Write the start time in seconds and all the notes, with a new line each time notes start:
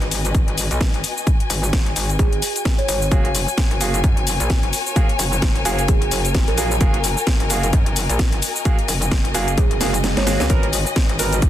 Already playing: F#4 B4 D#5 G#5
0.02 G#1, closed hi-hat
0.11 open hi-hat, shaker
0.25 closed hi-hat, shaker
0.35 G#1, kick, closed hi-hat, shaker
0.48 G#1, closed hi-hat
0.58 open hi-hat, shaker
0.71 B1, closed hi-hat, shaker
0.81 kick, snare, closed hi-hat, shaker
0.94 G#1, closed hi-hat
1.04 open hi-hat, shaker
1.17 shaker
1.27 kick, closed hi-hat, shaker
1.40 closed hi-hat
1.50 G#1, open hi-hat, shaker
1.63 shaker
1.73 G#1, kick, snare, closed hi-hat, shaker
1.86 closed hi-hat
1.96 G#1, open hi-hat, shaker
2.09 closed hi-hat, shaker
2.19 G#1 G#4, kick, closed hi-hat, shaker
2.33 closed hi-hat
2.42 open hi-hat, shaker
2.56 closed hi-hat, shaker
2.65 kick, snare, closed hi-hat
2.78 C#5, closed hi-hat
2.88 G#1 C#5, open hi-hat, shaker
3.02 shaker
3.11 F#1 A#3 F#4 G#4, kick, closed hi-hat, shaker
3.25 closed hi-hat
3.35 open hi-hat, shaker
3.48 shaker
3.55 A#4, kick, snare, closed hi-hat, shaker
3.71 F#1, closed hi-hat
3.77 A#3 F#4 G#4 C#5, open hi-hat, shaker
3.94 closed hi-hat, shaker
4.04 F#2, kick, closed hi-hat, shaker
4.17 F#1, closed hi-hat
4.27 open hi-hat, shaker
4.40 A#1, closed hi-hat, shaker
4.50 kick, snare, closed hi-hat, shaker
4.63 F#1, closed hi-hat
4.73 open hi-hat, shaker
4.86 shaker
4.96 A#3 F#4 G#4, kick, closed hi-hat, shaker
5.09 closed hi-hat
5.19 F#1, open hi-hat, shaker
5.33 shaker
5.42 F#1, kick, snare, closed hi-hat, shaker
5.55 closed hi-hat
5.65 F#1 A#3 F#4 G#4, open hi-hat, shaker
5.79 closed hi-hat, shaker
5.88 F#1 G#4, kick, closed hi-hat, shaker
6.02 closed hi-hat
6.11 F#1, open hi-hat, shaker
6.25 closed hi-hat, shaker
6.35 kick, snare, closed hi-hat, shaker
6.48 A#1 A#4, closed hi-hat
6.58 A#3 F#4 G#4 A#4, open hi-hat, shaker
6.71 shaker
6.81 F#1 A#3 F#4 G#4, kick, closed hi-hat, shaker
6.94 closed hi-hat
7.04 open hi-hat, shaker
7.17 shaker
7.27 kick, snare, closed hi-hat, shaker
7.36 F#1 D#5, closed hi-hat
7.50 A#3 F#4 G#4, open hi-hat, shaker
7.63 closed hi-hat, shaker
7.73 F#2, kick, closed hi-hat, shaker
7.86 F#1, closed hi-hat
7.96 open hi-hat, shaker
8.09 A#1, closed hi-hat, shaker
8.19 kick, snare, closed hi-hat, shaker
8.32 F#1, closed hi-hat
8.42 open hi-hat, shaker
8.56 shaker
8.65 A#3 F#4 G#4, kick, closed hi-hat, shaker
8.79 closed hi-hat
8.88 F#1, open hi-hat, shaker
9.02 closed hi-hat, shaker
9.12 F#1, kick, snare, closed hi-hat, shaker
9.25 closed hi-hat
9.34 F#1 A#3 F#4 G#4, open hi-hat, shaker
9.48 closed hi-hat, shaker
9.58 C#2 G#4, kick, closed hi-hat, swell, shaker
9.71 F#1, closed hi-hat
9.81 F#1 A#3 F#4 G#4, snare, open hi-hat, shaker
9.94 closed hi-hat, shaker
10.04 snare, closed hi-hat, shaker
10.17 G#1 C#5, snare, closed hi-hat
10.27 A#3 F#4 G#4 C#5, snare, open hi-hat, shaker
10.40 C#2, snare, shaker
10.50 G#1 G#3 B3 D#4 F#4 A#4, kick, closed hi-hat, shaker
10.58 B4
10.63 closed hi-hat
10.73 open hi-hat, shaker
10.86 shaker
10.96 kick, snare, closed hi-hat, shaker
11.09 G#1, closed hi-hat
11.19 B3 F#4 A#4, open hi-hat, shaker
11.32 closed hi-hat, shaker
11.42 G#1, kick, closed hi-hat, shaker